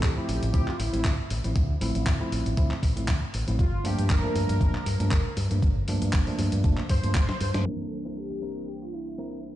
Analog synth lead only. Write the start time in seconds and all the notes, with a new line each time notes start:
0.04 G4
0.54 G4
0.69 F4
0.80 E4
3.60 F4
3.86 G4
4.11 A#4
4.36 A#4
6.90 C5
7.66 A#4
7.80 A4
8.17 G4
8.68 G4
8.82 F4
8.93 E4